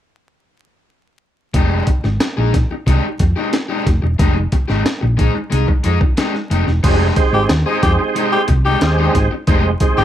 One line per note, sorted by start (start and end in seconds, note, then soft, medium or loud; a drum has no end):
1.54 1.81 F1 medium
1.54 1.85 G#3 medium
1.54 1.85 D#4 medium
1.54 1.85 G4 medium
1.54 kick loud
1.54 closed hi-hat medium
1.87 kick medium
1.87 closed hi-hat medium
2.04 2.17 G#1 medium
2.04 muted overdriven electric guitar stroke soft
2.04 snare soft
2.20 muted overdriven electric guitar stroke soft
2.20 snare loud
2.20 closed hi-hat medium
2.37 2.64 A#1 medium
2.37 2.53 G#3 medium
2.37 2.53 D#4 medium
2.37 2.54 G#4 medium
2.54 muted overdriven electric guitar stroke soft
2.54 kick medium
2.54 snare soft
2.54 closed hi-hat medium
2.71 muted overdriven electric guitar stroke soft
2.87 3.00 C2 medium
2.87 3.04 G#3 medium
2.87 3.04 D#4 medium
2.87 3.05 G4 medium
2.87 kick medium
2.87 closed hi-hat medium
3.19 3.33 F2 loud
3.19 muted overdriven electric guitar stroke soft
3.19 kick medium
3.19 closed hi-hat medium
3.36 3.50 G#3 soft
3.36 3.50 D#4 soft
3.36 3.50 G4 medium
3.53 muted overdriven electric guitar stroke soft
3.53 snare loud
3.53 closed hi-hat medium
3.69 3.85 G#3 medium
3.69 3.85 D#4 medium
3.69 3.86 G4 medium
3.86 3.99 F1 medium
3.86 muted overdriven electric guitar stroke soft
3.86 kick medium
3.86 snare soft
3.86 closed hi-hat medium
4.02 4.16 E1 medium
4.02 muted overdriven electric guitar stroke soft
4.19 4.45 F1 loud
4.19 4.36 G#3 medium
4.19 4.35 D#4 medium
4.19 4.34 G4 medium
4.19 kick loud
4.19 closed hi-hat medium
4.35 muted overdriven electric guitar stroke soft
4.52 muted overdriven electric guitar stroke soft
4.52 kick medium
4.52 closed hi-hat medium
4.68 4.82 G#1 medium
4.68 4.83 G#3 soft
4.68 4.82 D#4 medium
4.68 4.82 G4 medium
4.68 snare soft
4.86 snare loud
4.86 closed hi-hat medium
5.01 5.29 A#1 medium
5.01 muted overdriven electric guitar stroke medium
5.17 5.35 G#3 medium
5.17 5.34 D#4 medium
5.17 5.34 G#4 medium
5.17 kick medium
5.17 closed hi-hat medium
5.35 muted overdriven electric guitar stroke soft
5.50 5.65 C2 medium
5.50 5.68 G#3 medium
5.50 5.68 D#4 medium
5.50 5.67 G#4 medium
5.50 closed hi-hat medium
5.68 muted overdriven electric guitar stroke soft
5.68 kick medium
5.84 5.98 F2 loud
5.84 5.97 G#3 medium
5.84 5.98 D#4 medium
5.84 5.98 G#4 medium
5.84 closed hi-hat medium
6.01 muted overdriven electric guitar stroke soft
6.01 kick loud
6.17 6.34 G#3 medium
6.17 6.34 D#4 medium
6.17 6.33 G4 medium
6.17 snare loud
6.17 closed hi-hat medium
6.34 muted overdriven electric guitar stroke soft
6.34 snare soft
6.50 6.64 F1 medium
6.50 6.64 G#3 medium
6.50 6.64 D#4 medium
6.50 6.64 G4 medium
6.50 closed hi-hat medium
6.67 6.80 E1 medium
6.67 muted overdriven electric guitar stroke medium
6.67 snare soft
6.83 7.10 F1 loud
6.83 6.96 G3 medium
6.83 7.07 G#3 medium
6.83 7.07 C4 medium
6.83 6.97 D4 medium
6.83 7.07 D#4 medium
6.83 6.97 F#4 loud
6.83 7.07 G4 medium
6.83 kick loud
6.83 closed hi-hat medium
6.83 crash medium
6.96 7.14 G#3 medium
6.96 7.14 D#4 medium
6.96 7.15 G4 loud
7.16 7.52 G#3 medium
7.16 7.52 C4 medium
7.16 7.52 D#4 medium
7.16 7.52 G4 medium
7.16 kick medium
7.16 closed hi-hat medium
7.33 7.46 G#1 medium
7.33 7.44 G4 medium
7.33 muted overdriven electric guitar stroke soft
7.49 7.63 D#2 loud
7.49 muted overdriven electric guitar stroke soft
7.49 snare loud
7.49 closed hi-hat medium
7.66 8.49 G#3 medium
7.66 7.82 G#3 medium
7.66 8.49 C4 medium
7.66 8.49 D#4 medium
7.66 7.83 D#4 medium
7.66 8.49 G4 medium
7.66 7.83 G#4 medium
7.83 7.96 F2 loud
7.83 7.93 G4 medium
7.83 muted overdriven electric guitar stroke soft
7.83 kick medium
7.83 snare soft
7.83 closed hi-hat medium
7.99 muted overdriven electric guitar stroke soft
8.15 8.33 G#3 medium
8.15 8.33 D#4 medium
8.15 8.33 G4 medium
8.15 closed hi-hat medium
8.32 8.43 G4 loud
8.48 8.75 C2 medium
8.48 muted overdriven electric guitar stroke soft
8.48 kick medium
8.48 closed hi-hat medium
8.65 8.79 G#3 soft
8.65 8.79 D#4 soft
8.65 8.78 G4 medium
8.65 9.12 G4 loud
8.81 9.08 D#2 loud
8.81 9.29 G#3 medium
8.81 9.29 C4 medium
8.81 9.29 D#4 medium
8.81 8.88 F4 medium
8.81 muted overdriven electric guitar stroke soft
8.81 snare loud
8.81 closed hi-hat medium
8.88 9.32 G4 medium
8.98 9.13 G#3 medium
8.98 9.14 D#4 medium
8.98 9.15 G4 medium
9.15 9.28 G#1 loud
9.15 muted overdriven electric guitar stroke soft
9.15 kick medium
9.15 snare soft
9.15 closed hi-hat medium
9.31 muted overdriven electric guitar stroke medium
9.47 9.74 F1 medium
9.47 9.71 G#3 medium
9.47 9.65 G#3 medium
9.47 9.71 C4 medium
9.47 9.71 D#4 medium
9.47 9.64 D#4 loud
9.47 9.71 G4 medium
9.47 9.63 G4 loud
9.47 kick loud
9.47 closed hi-hat medium
9.64 muted overdriven electric guitar stroke soft
9.80 10.04 G#3 medium
9.80 10.04 C4 medium
9.80 10.04 D#4 medium
9.80 10.04 G4 medium
9.80 muted overdriven electric guitar stroke soft
9.80 kick medium
9.80 closed hi-hat medium
9.97 10.04 G#1 medium
9.97 10.04 G#3 medium
9.97 10.04 D#4 soft
9.97 10.04 G4 medium
9.97 10.04 G4 loud
9.97 snare soft